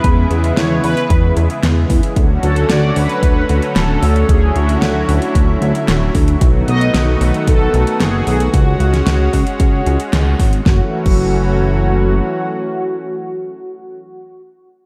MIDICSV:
0, 0, Header, 1, 5, 480
1, 0, Start_track
1, 0, Key_signature, 3, "minor"
1, 0, Tempo, 530973
1, 38, Time_signature, 4, 2, 24, 8
1, 13432, End_track
2, 0, Start_track
2, 0, Title_t, "Analog polysynth"
2, 0, Program_c, 0, 90
2, 0, Note_on_c, 0, 71, 104
2, 242, Note_off_c, 0, 71, 0
2, 515, Note_on_c, 0, 73, 114
2, 759, Note_on_c, 0, 71, 101
2, 764, Note_off_c, 0, 73, 0
2, 1205, Note_off_c, 0, 71, 0
2, 2198, Note_on_c, 0, 69, 104
2, 2439, Note_on_c, 0, 74, 111
2, 2445, Note_off_c, 0, 69, 0
2, 2685, Note_off_c, 0, 74, 0
2, 2685, Note_on_c, 0, 71, 119
2, 3402, Note_on_c, 0, 69, 99
2, 3423, Note_off_c, 0, 71, 0
2, 3846, Note_off_c, 0, 69, 0
2, 3885, Note_on_c, 0, 68, 101
2, 4123, Note_on_c, 0, 66, 93
2, 4128, Note_off_c, 0, 68, 0
2, 5044, Note_off_c, 0, 66, 0
2, 6040, Note_on_c, 0, 75, 119
2, 6485, Note_off_c, 0, 75, 0
2, 6518, Note_on_c, 0, 71, 92
2, 6626, Note_off_c, 0, 71, 0
2, 6757, Note_on_c, 0, 69, 108
2, 7204, Note_off_c, 0, 69, 0
2, 7238, Note_on_c, 0, 68, 99
2, 7684, Note_off_c, 0, 68, 0
2, 7721, Note_on_c, 0, 66, 108
2, 9123, Note_off_c, 0, 66, 0
2, 9634, Note_on_c, 0, 66, 92
2, 9770, Note_off_c, 0, 66, 0
2, 9992, Note_on_c, 0, 66, 109
2, 13032, Note_off_c, 0, 66, 0
2, 13432, End_track
3, 0, Start_track
3, 0, Title_t, "Analog synth pad"
3, 0, Program_c, 1, 89
3, 0, Note_on_c, 1, 49, 88
3, 0, Note_on_c, 1, 52, 83
3, 0, Note_on_c, 1, 56, 79
3, 0, Note_on_c, 1, 59, 81
3, 0, Note_on_c, 1, 64, 92
3, 1922, Note_off_c, 1, 52, 0
3, 1924, Note_off_c, 1, 49, 0
3, 1924, Note_off_c, 1, 56, 0
3, 1924, Note_off_c, 1, 59, 0
3, 1924, Note_off_c, 1, 64, 0
3, 1960, Note_on_c, 1, 50, 87
3, 1960, Note_on_c, 1, 54, 78
3, 1960, Note_on_c, 1, 61, 81
3, 1960, Note_on_c, 1, 66, 97
3, 1961, Note_on_c, 1, 57, 79
3, 3860, Note_off_c, 1, 66, 0
3, 3880, Note_on_c, 1, 64, 91
3, 5762, Note_off_c, 1, 61, 0
3, 5763, Note_off_c, 1, 50, 0
3, 5763, Note_off_c, 1, 57, 0
3, 5780, Note_off_c, 1, 64, 0
3, 5800, Note_on_c, 1, 57, 78
3, 5800, Note_on_c, 1, 66, 98
3, 5801, Note_on_c, 1, 51, 81
3, 5801, Note_on_c, 1, 59, 76
3, 7682, Note_off_c, 1, 54, 0
3, 7699, Note_off_c, 1, 57, 0
3, 7700, Note_off_c, 1, 51, 0
3, 7700, Note_off_c, 1, 59, 0
3, 7714, Note_on_c, 1, 61, 78
3, 7715, Note_on_c, 1, 56, 82
3, 9603, Note_off_c, 1, 66, 0
3, 9617, Note_off_c, 1, 56, 0
3, 9617, Note_off_c, 1, 61, 0
3, 9634, Note_on_c, 1, 54, 80
3, 9635, Note_on_c, 1, 52, 85
3, 9635, Note_on_c, 1, 57, 78
3, 9635, Note_on_c, 1, 61, 77
3, 9635, Note_on_c, 1, 66, 95
3, 12673, Note_off_c, 1, 54, 0
3, 12674, Note_off_c, 1, 52, 0
3, 12674, Note_off_c, 1, 57, 0
3, 12674, Note_off_c, 1, 61, 0
3, 12674, Note_off_c, 1, 66, 0
3, 13432, End_track
4, 0, Start_track
4, 0, Title_t, "Analog synth bass"
4, 0, Program_c, 2, 38
4, 38, Note_on_c, 2, 40, 100
4, 234, Note_off_c, 2, 40, 0
4, 276, Note_on_c, 2, 40, 88
4, 474, Note_off_c, 2, 40, 0
4, 518, Note_on_c, 2, 40, 100
4, 715, Note_off_c, 2, 40, 0
4, 758, Note_on_c, 2, 40, 101
4, 856, Note_off_c, 2, 40, 0
4, 997, Note_on_c, 2, 40, 93
4, 1194, Note_off_c, 2, 40, 0
4, 1237, Note_on_c, 2, 40, 101
4, 1336, Note_off_c, 2, 40, 0
4, 1477, Note_on_c, 2, 40, 87
4, 1674, Note_off_c, 2, 40, 0
4, 1717, Note_on_c, 2, 40, 80
4, 1816, Note_off_c, 2, 40, 0
4, 1957, Note_on_c, 2, 38, 100
4, 2154, Note_off_c, 2, 38, 0
4, 2198, Note_on_c, 2, 38, 83
4, 2394, Note_off_c, 2, 38, 0
4, 2439, Note_on_c, 2, 38, 98
4, 2635, Note_off_c, 2, 38, 0
4, 2679, Note_on_c, 2, 38, 95
4, 2777, Note_off_c, 2, 38, 0
4, 2917, Note_on_c, 2, 38, 80
4, 3114, Note_off_c, 2, 38, 0
4, 3161, Note_on_c, 2, 38, 100
4, 3257, Note_off_c, 2, 38, 0
4, 3399, Note_on_c, 2, 26, 83
4, 3595, Note_off_c, 2, 26, 0
4, 3640, Note_on_c, 2, 38, 90
4, 3836, Note_off_c, 2, 38, 0
4, 3878, Note_on_c, 2, 38, 98
4, 4074, Note_off_c, 2, 38, 0
4, 4120, Note_on_c, 2, 38, 81
4, 4316, Note_off_c, 2, 38, 0
4, 4359, Note_on_c, 2, 38, 97
4, 4555, Note_off_c, 2, 38, 0
4, 4598, Note_on_c, 2, 38, 104
4, 4696, Note_off_c, 2, 38, 0
4, 4838, Note_on_c, 2, 38, 85
4, 5035, Note_off_c, 2, 38, 0
4, 5079, Note_on_c, 2, 38, 94
4, 5177, Note_off_c, 2, 38, 0
4, 5318, Note_on_c, 2, 26, 82
4, 5514, Note_off_c, 2, 26, 0
4, 5558, Note_on_c, 2, 38, 91
4, 5755, Note_off_c, 2, 38, 0
4, 5798, Note_on_c, 2, 35, 102
4, 5995, Note_off_c, 2, 35, 0
4, 6039, Note_on_c, 2, 35, 85
4, 6235, Note_off_c, 2, 35, 0
4, 6278, Note_on_c, 2, 35, 99
4, 6474, Note_off_c, 2, 35, 0
4, 6518, Note_on_c, 2, 35, 103
4, 6616, Note_off_c, 2, 35, 0
4, 6756, Note_on_c, 2, 35, 82
4, 6954, Note_off_c, 2, 35, 0
4, 6998, Note_on_c, 2, 35, 101
4, 7096, Note_off_c, 2, 35, 0
4, 7238, Note_on_c, 2, 30, 81
4, 7435, Note_off_c, 2, 30, 0
4, 7479, Note_on_c, 2, 35, 88
4, 7675, Note_off_c, 2, 35, 0
4, 7717, Note_on_c, 2, 37, 95
4, 7914, Note_off_c, 2, 37, 0
4, 7957, Note_on_c, 2, 37, 84
4, 8154, Note_off_c, 2, 37, 0
4, 8197, Note_on_c, 2, 37, 102
4, 8394, Note_off_c, 2, 37, 0
4, 8437, Note_on_c, 2, 37, 95
4, 8536, Note_off_c, 2, 37, 0
4, 8676, Note_on_c, 2, 37, 86
4, 8874, Note_off_c, 2, 37, 0
4, 8918, Note_on_c, 2, 37, 94
4, 9016, Note_off_c, 2, 37, 0
4, 9158, Note_on_c, 2, 37, 95
4, 9355, Note_off_c, 2, 37, 0
4, 9397, Note_on_c, 2, 32, 98
4, 9594, Note_off_c, 2, 32, 0
4, 9637, Note_on_c, 2, 30, 93
4, 9771, Note_off_c, 2, 30, 0
4, 9997, Note_on_c, 2, 30, 96
4, 11041, Note_off_c, 2, 30, 0
4, 13432, End_track
5, 0, Start_track
5, 0, Title_t, "Drums"
5, 37, Note_on_c, 9, 42, 88
5, 38, Note_on_c, 9, 36, 127
5, 127, Note_off_c, 9, 42, 0
5, 128, Note_off_c, 9, 36, 0
5, 277, Note_on_c, 9, 42, 66
5, 368, Note_off_c, 9, 42, 0
5, 397, Note_on_c, 9, 42, 66
5, 488, Note_off_c, 9, 42, 0
5, 518, Note_on_c, 9, 38, 127
5, 518, Note_on_c, 9, 42, 93
5, 608, Note_off_c, 9, 38, 0
5, 608, Note_off_c, 9, 42, 0
5, 757, Note_on_c, 9, 46, 72
5, 847, Note_off_c, 9, 46, 0
5, 877, Note_on_c, 9, 42, 63
5, 967, Note_off_c, 9, 42, 0
5, 996, Note_on_c, 9, 42, 101
5, 997, Note_on_c, 9, 36, 126
5, 1087, Note_off_c, 9, 42, 0
5, 1088, Note_off_c, 9, 36, 0
5, 1235, Note_on_c, 9, 42, 67
5, 1325, Note_off_c, 9, 42, 0
5, 1356, Note_on_c, 9, 42, 69
5, 1446, Note_off_c, 9, 42, 0
5, 1476, Note_on_c, 9, 38, 127
5, 1476, Note_on_c, 9, 42, 94
5, 1567, Note_off_c, 9, 38, 0
5, 1567, Note_off_c, 9, 42, 0
5, 1716, Note_on_c, 9, 46, 76
5, 1717, Note_on_c, 9, 36, 110
5, 1806, Note_off_c, 9, 46, 0
5, 1807, Note_off_c, 9, 36, 0
5, 1837, Note_on_c, 9, 42, 64
5, 1927, Note_off_c, 9, 42, 0
5, 1956, Note_on_c, 9, 42, 89
5, 1957, Note_on_c, 9, 36, 124
5, 2046, Note_off_c, 9, 42, 0
5, 2047, Note_off_c, 9, 36, 0
5, 2197, Note_on_c, 9, 42, 65
5, 2287, Note_off_c, 9, 42, 0
5, 2317, Note_on_c, 9, 42, 67
5, 2407, Note_off_c, 9, 42, 0
5, 2437, Note_on_c, 9, 38, 122
5, 2437, Note_on_c, 9, 42, 86
5, 2527, Note_off_c, 9, 38, 0
5, 2527, Note_off_c, 9, 42, 0
5, 2678, Note_on_c, 9, 46, 79
5, 2768, Note_off_c, 9, 46, 0
5, 2797, Note_on_c, 9, 42, 60
5, 2888, Note_off_c, 9, 42, 0
5, 2917, Note_on_c, 9, 36, 126
5, 2918, Note_on_c, 9, 42, 93
5, 3008, Note_off_c, 9, 36, 0
5, 3008, Note_off_c, 9, 42, 0
5, 3157, Note_on_c, 9, 42, 65
5, 3248, Note_off_c, 9, 42, 0
5, 3277, Note_on_c, 9, 42, 65
5, 3367, Note_off_c, 9, 42, 0
5, 3398, Note_on_c, 9, 38, 124
5, 3398, Note_on_c, 9, 42, 87
5, 3488, Note_off_c, 9, 38, 0
5, 3488, Note_off_c, 9, 42, 0
5, 3639, Note_on_c, 9, 46, 85
5, 3729, Note_off_c, 9, 46, 0
5, 3760, Note_on_c, 9, 42, 63
5, 3850, Note_off_c, 9, 42, 0
5, 3878, Note_on_c, 9, 36, 115
5, 3879, Note_on_c, 9, 42, 89
5, 3968, Note_off_c, 9, 36, 0
5, 3970, Note_off_c, 9, 42, 0
5, 4119, Note_on_c, 9, 42, 66
5, 4209, Note_off_c, 9, 42, 0
5, 4240, Note_on_c, 9, 42, 64
5, 4330, Note_off_c, 9, 42, 0
5, 4357, Note_on_c, 9, 38, 118
5, 4357, Note_on_c, 9, 42, 92
5, 4448, Note_off_c, 9, 38, 0
5, 4448, Note_off_c, 9, 42, 0
5, 4599, Note_on_c, 9, 46, 80
5, 4689, Note_off_c, 9, 46, 0
5, 4718, Note_on_c, 9, 42, 60
5, 4808, Note_off_c, 9, 42, 0
5, 4838, Note_on_c, 9, 36, 115
5, 4839, Note_on_c, 9, 42, 95
5, 4928, Note_off_c, 9, 36, 0
5, 4929, Note_off_c, 9, 42, 0
5, 5079, Note_on_c, 9, 42, 68
5, 5170, Note_off_c, 9, 42, 0
5, 5198, Note_on_c, 9, 42, 65
5, 5288, Note_off_c, 9, 42, 0
5, 5317, Note_on_c, 9, 38, 122
5, 5317, Note_on_c, 9, 42, 92
5, 5407, Note_off_c, 9, 38, 0
5, 5407, Note_off_c, 9, 42, 0
5, 5557, Note_on_c, 9, 46, 84
5, 5558, Note_on_c, 9, 36, 101
5, 5647, Note_off_c, 9, 46, 0
5, 5648, Note_off_c, 9, 36, 0
5, 5676, Note_on_c, 9, 42, 60
5, 5766, Note_off_c, 9, 42, 0
5, 5796, Note_on_c, 9, 42, 93
5, 5798, Note_on_c, 9, 36, 115
5, 5887, Note_off_c, 9, 42, 0
5, 5888, Note_off_c, 9, 36, 0
5, 6039, Note_on_c, 9, 42, 68
5, 6129, Note_off_c, 9, 42, 0
5, 6159, Note_on_c, 9, 42, 70
5, 6249, Note_off_c, 9, 42, 0
5, 6278, Note_on_c, 9, 38, 114
5, 6278, Note_on_c, 9, 42, 91
5, 6368, Note_off_c, 9, 38, 0
5, 6368, Note_off_c, 9, 42, 0
5, 6518, Note_on_c, 9, 46, 81
5, 6609, Note_off_c, 9, 46, 0
5, 6638, Note_on_c, 9, 42, 61
5, 6728, Note_off_c, 9, 42, 0
5, 6757, Note_on_c, 9, 36, 122
5, 6757, Note_on_c, 9, 42, 94
5, 6847, Note_off_c, 9, 42, 0
5, 6848, Note_off_c, 9, 36, 0
5, 6996, Note_on_c, 9, 42, 66
5, 7086, Note_off_c, 9, 42, 0
5, 7116, Note_on_c, 9, 42, 68
5, 7206, Note_off_c, 9, 42, 0
5, 7236, Note_on_c, 9, 38, 112
5, 7236, Note_on_c, 9, 42, 91
5, 7326, Note_off_c, 9, 38, 0
5, 7326, Note_off_c, 9, 42, 0
5, 7476, Note_on_c, 9, 46, 84
5, 7566, Note_off_c, 9, 46, 0
5, 7596, Note_on_c, 9, 42, 67
5, 7686, Note_off_c, 9, 42, 0
5, 7717, Note_on_c, 9, 36, 114
5, 7717, Note_on_c, 9, 42, 92
5, 7808, Note_off_c, 9, 36, 0
5, 7808, Note_off_c, 9, 42, 0
5, 7957, Note_on_c, 9, 42, 70
5, 8048, Note_off_c, 9, 42, 0
5, 8078, Note_on_c, 9, 38, 38
5, 8078, Note_on_c, 9, 42, 68
5, 8168, Note_off_c, 9, 38, 0
5, 8168, Note_off_c, 9, 42, 0
5, 8195, Note_on_c, 9, 38, 116
5, 8195, Note_on_c, 9, 42, 97
5, 8286, Note_off_c, 9, 38, 0
5, 8286, Note_off_c, 9, 42, 0
5, 8437, Note_on_c, 9, 36, 60
5, 8437, Note_on_c, 9, 46, 81
5, 8527, Note_off_c, 9, 46, 0
5, 8528, Note_off_c, 9, 36, 0
5, 8558, Note_on_c, 9, 42, 63
5, 8648, Note_off_c, 9, 42, 0
5, 8676, Note_on_c, 9, 42, 96
5, 8677, Note_on_c, 9, 36, 119
5, 8766, Note_off_c, 9, 42, 0
5, 8767, Note_off_c, 9, 36, 0
5, 8918, Note_on_c, 9, 42, 74
5, 9008, Note_off_c, 9, 42, 0
5, 9037, Note_on_c, 9, 42, 70
5, 9127, Note_off_c, 9, 42, 0
5, 9157, Note_on_c, 9, 38, 113
5, 9157, Note_on_c, 9, 42, 92
5, 9248, Note_off_c, 9, 38, 0
5, 9248, Note_off_c, 9, 42, 0
5, 9397, Note_on_c, 9, 36, 101
5, 9397, Note_on_c, 9, 46, 89
5, 9488, Note_off_c, 9, 36, 0
5, 9488, Note_off_c, 9, 46, 0
5, 9518, Note_on_c, 9, 42, 66
5, 9608, Note_off_c, 9, 42, 0
5, 9637, Note_on_c, 9, 36, 117
5, 9638, Note_on_c, 9, 38, 86
5, 9727, Note_off_c, 9, 36, 0
5, 9728, Note_off_c, 9, 38, 0
5, 9996, Note_on_c, 9, 49, 93
5, 9997, Note_on_c, 9, 36, 112
5, 10086, Note_off_c, 9, 49, 0
5, 10087, Note_off_c, 9, 36, 0
5, 13432, End_track
0, 0, End_of_file